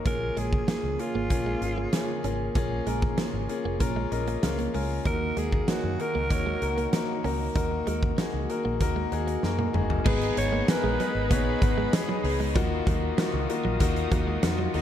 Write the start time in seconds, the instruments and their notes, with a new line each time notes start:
Already playing: analog synth pad A#3
0.05 fingered electric bass A#1, analog synth pad C#3 G#4, grand piano A#3 C#4 F4 G#4, clean electric guitar A#3, alto saxophone A#4, kick, closed hi-hat
0.21 muted clean electric guitar stroke
0.37 fingered electric bass A#1, clean electric guitar G#3, grand piano A#3 C#4 F4 G#4, alto saxophone G#4, closed hi-hat
0.53 kick
0.68 grand piano A#3 C#4 F4 G#4, clean electric guitar A#3, alto saxophone G#4, snare, closed hi-hat
0.83 fingered electric bass C#2, muted clean electric guitar stroke
0.99 grand piano A#3 C#4 F4 G#4, alto saxophone F4, closed hi-hat
1.15 fingered electric bass G#1, clean electric guitar A#3
1.30 fingered electric bass A#1, grand piano A#3 C#4 F4 G#4, kick, closed hi-hat
1.46 clean electric guitar G#3
1.61 fingered electric bass G#1, grand piano A#3 C#4 F4 G#4, muted clean electric guitar stroke, closed hi-hat
1.78 clean electric guitar A#3
1.93 grand piano A#3 C#4 F4 G#4, snare, closed hi-hat
2.24 fingered electric bass G#1, grand piano A#3 C#4 F4 G#4, clean electric guitar C#4, closed hi-hat
2.55 fingered electric bass A#1, grand piano A#3 C#4 F4 G#4, clean electric guitar A#3, kick, closed hi-hat
2.71 muted clean electric guitar stroke
2.86 fingered electric bass A#1, clean electric guitar G#3, grand piano A#3 C#4 F4 A#4, closed hi-hat
3.02 kick
3.17 grand piano A#3 C#4 F4 G#4, clean electric guitar A#3, snare, closed hi-hat
3.34 fingered electric bass G#1, muted clean electric guitar stroke
3.49 grand piano A#3 C#4 F4 G#4, closed hi-hat
3.65 fingered electric bass F1, clean electric guitar A#3
3.80 fingered electric bass A#1, grand piano A#3 C#4 F4 A#4, kick, closed hi-hat
3.96 clean electric guitar G#3
4.11 fingered electric bass A#1, grand piano A#3 C#4 F4 A#4 D#5, muted clean electric guitar stroke, closed hi-hat
4.27 clean electric guitar A#3, closed hi-hat
4.43 fingered electric bass C#2, grand piano A#3 C#4 F4 A#4 F5, muted clean electric guitar stroke, snare, closed hi-hat
4.59 clean electric guitar A#3, closed hi-hat
4.74 fingered electric bass C#2, clean electric guitar G#3, grand piano A#3 C#4 F4 A#4 G#5, open hi-hat
5.05 fingered electric bass D#2, analog synth pad D#3 A#3 F#4, grand piano A#3 D#4 F#4 A#4, clean electric guitar D#4, alto saxophone A#4, kick, closed hi-hat
5.21 muted clean electric guitar stroke
5.37 fingered electric bass D#2, clean electric guitar G#3, grand piano A#3 D#4 F#4 G#4, alto saxophone G#4, closed hi-hat
5.52 kick
5.68 grand piano A#3 D#4 F#4 C#5, clean electric guitar A#3, alto saxophone F#4, snare, closed hi-hat
5.84 fingered electric bass F#2, muted clean electric guitar stroke
5.99 grand piano A#3 D#4 F#4 A#4, alto saxophone A#4, closed hi-hat
6.15 fingered electric bass C#2, clean electric guitar A#3
6.30 fingered electric bass D#2, grand piano A#3 D#4 F#4 C#5, kick, closed hi-hat
6.46 clean electric guitar G#3
6.62 fingered electric bass C#2, grand piano A#3 D#4 F#4 A#4, muted clean electric guitar stroke, closed hi-hat
6.78 clean electric guitar A#3, closed hi-hat
6.93 grand piano A#3 D#4 F#4 A#4, snare, closed hi-hat
7.24 fingered electric bass C#2, grand piano A#3 D#4 F#4 A#4, clean electric guitar C#4, open hi-hat
7.55 fingered electric bass D#2, grand piano A#3 D#4 F#4 A#4, clean electric guitar D#4, kick, closed hi-hat
7.71 muted clean electric guitar stroke
7.87 fingered electric bass D#2, clean electric guitar G#3, grand piano A#3 D#4 F#4 A#4, closed hi-hat
8.03 kick
8.18 grand piano A#3 D#4 F#4 G#4, clean electric guitar A#3, snare, closed hi-hat
8.34 fingered electric bass C#2, muted clean electric guitar stroke
8.49 grand piano A#3 D#4 F#4 A#4, closed hi-hat
8.65 fingered electric bass A#1, clean electric guitar A#3
8.80 fingered electric bass D#2, grand piano A#3 D#4 F#4 A#4, kick, closed hi-hat
8.96 clean electric guitar G#3
9.12 fingered electric bass D#2, grand piano A#3 D#4 F#4 G#4, muted clean electric guitar stroke, closed hi-hat
9.27 clean electric guitar A#3, closed hi-hat
9.43 fingered electric bass F#2, grand piano A#3 D#4 F#4 A#4, muted clean electric guitar stroke, snare
9.59 clean electric guitar A#3, high tom
9.74 fingered electric bass F#1, clean electric guitar G#3, grand piano A#3 D#4 F#4 G#4, mid tom
9.90 floor tom
10.05 fingered electric bass G#1, overdriven electric guitar G#3 D#4 G#4, clean electric guitar G#3, grand piano B3 D#4 G#4 B4, analog synth pad G#4 D#5 B5, alto saxophone G#4, kick, crash
10.21 closed hi-hat
10.37 fingered electric bass G#1, grand piano B3 D#4 G#4 B4, alto saxophone C#5, muted clean electric guitar stroke, closed hi-hat
10.53 clean electric guitar A#3
10.67 overdriven electric guitar G#3 D#4 G#4, grand piano B3 D#4 G#4 A#4, alto saxophone B4, snare, closed hi-hat, tambourine
10.84 fingered electric bass A#1, clean electric guitar G#3
10.99 clean electric guitar F#3, grand piano B3 D#4 G#4 B4, closed hi-hat
11.15 fingered electric bass G#1
11.30 fingered electric bass A#1, overdriven electric guitar G#3 D#4 G#4, clean electric guitar A#3, grand piano B3 D#4 G#4 C#5, alto saxophone B4, kick, closed hi-hat
11.62 fingered electric bass G#1, grand piano B3 D#4 G#4 B4, muted clean electric guitar stroke, kick, closed hi-hat
11.78 clean electric guitar G#3
11.93 grand piano B3 D#4 G#4 B4, alto saxophone G#4, snare, closed hi-hat, tambourine
12.09 clean electric guitar F#3
12.23 fingered electric bass C#2, grand piano B3 D#4 G#4 B4, overdriven electric guitar D#4 G#4, muted clean electric guitar stroke, open hi-hat
12.40 clean electric guitar G#3
12.54 fingered electric bass D#2, overdriven electric guitar D#3 A#3, clean electric guitar F3, grand piano A#3 D#4 F4 F#4, analog synth pad F#4 F5 D#6, kick, closed hi-hat
12.59 overdriven electric guitar D#4
12.86 fingered electric bass D#2, clean electric guitar F#3, grand piano A#3 D#4 F4 F#4, kick, closed hi-hat
13.03 muted clean electric guitar stroke
13.18 clean electric guitar G#3, grand piano A#3 D#4 F4 F#4, snare, closed hi-hat, tambourine
13.34 fingered electric bass C#2, muted clean electric guitar stroke
13.49 grand piano A#3 D#4 F4 F#4, closed hi-hat
13.65 fingered electric bass A#1, clean electric guitar F#3
13.80 fingered electric bass D#2, overdriven electric guitar D#3 A#3 D#4, grand piano A#3 D#4 F4 F#4, muted clean electric guitar stroke, kick, closed hi-hat
13.96 closed hi-hat
14.11 fingered electric bass D#2, grand piano A#3 D#4 F4 F#4, clean electric guitar A#3, kick, closed hi-hat
14.27 clean electric guitar G#3
14.42 fingered electric bass F2, grand piano A#3 D#4 F4 F#4, snare, closed hi-hat, tambourine
14.59 clean electric guitar F#3
14.74 fingered electric bass D#2, grand piano A#3 D#4 F4 F#4, overdriven electric guitar A#3 D#4, muted clean electric guitar stroke, open hi-hat